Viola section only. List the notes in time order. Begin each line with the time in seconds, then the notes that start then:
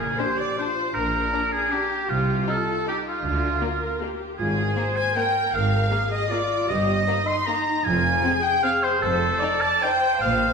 Already playing: A#4
0.20 G4
0.60 F4
0.96 D4
1.72 G4
2.49 F4
2.88 D#4
3.25 D4
3.63 A#4
4.02 G4
4.39 F4
4.76 C5
5.17 A#4
5.91 G#4
6.31 F4
6.69 G4
7.08 D#4
7.86 F4
8.24 G#4
8.64 G#4
9.02 C5
9.41 D5
9.83 C5